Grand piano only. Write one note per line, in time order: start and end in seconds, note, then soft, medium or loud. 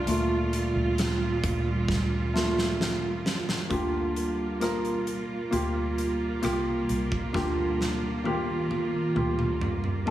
0.00 2.75 D5 medium
0.07 1.39 A3 soft
0.07 1.39 A#3 medium
0.07 1.40 F4 medium
2.34 2.75 A3 soft
2.34 2.76 A#3 soft
2.34 2.76 F4 medium
3.70 5.03 D3 medium
3.70 4.56 A#3 medium
3.70 4.57 F4 medium
3.70 4.57 G4 medium
4.60 5.47 A#3 medium
4.60 5.48 F4 medium
4.60 5.48 A#4 medium
5.51 6.38 A#3 medium
5.51 6.38 F4 medium
5.51 6.39 G4 medium
6.42 7.29 A#3 medium
6.42 7.29 F4 medium
6.42 7.30 G4 medium
7.33 8.66 D3 medium
7.33 8.20 A#3 medium
7.33 8.20 F4 medium
7.33 8.21 G4 medium
8.24 9.11 A#3 medium
8.24 9.11 F4 medium
8.24 9.12 G4 medium
9.15 10.02 A#3 medium
9.15 10.02 F4 medium
9.15 10.03 G4 medium
10.06 10.11 A#3 medium
10.06 10.11 F4 medium